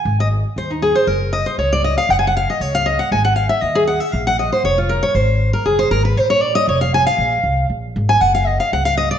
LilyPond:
<<
  \new Staff \with { instrumentName = "Steel-string acoustic guitar" } { \time 4/4 \key bes \minor \tempo 4 = 235 aes''8 ees''8 r4 c''8 ees'8 aes'8 c''8 | bes'4 ees''8 c''8 des''8 d''8 ees''8 f''8 | \tuplet 3/2 { ges''8 aes''8 ges''8 } f''8 ees''8 des''8 f''8 ees''8 ges''8 | aes''8 ges''8 f''8 e''8 ees''8 aes'8 ges''8 e''8 |
f''8 ges''8 ees''8 c''8 des''8 f'8 bes'8 des''8 | c''4. bes'8 aes'8 c''8 bes'8 ces''8 | c''8 des''8 d''8 ees''8 des''8 f''8 aes''8 f''8~ | f''2 r4. aes''8 |
ges''8 f''8 ees''8 f''8 ges''8 f''8 ees''8 d''8 | }
  \new Staff \with { instrumentName = "Upright bass" } { \clef bass \time 4/4 \key bes \minor aes,,2 ees,2 | ges,,2 des,2 | ges,,2 des,2 | aes,,2 ees,2 |
bes,,2 f,,2 | aes,,2 ges,,4 aes,,4 | bes,,2 f,,2 | bes,,4 c,4 bes,,4 aes,,4 |
ges,,2 des,2 | }
>>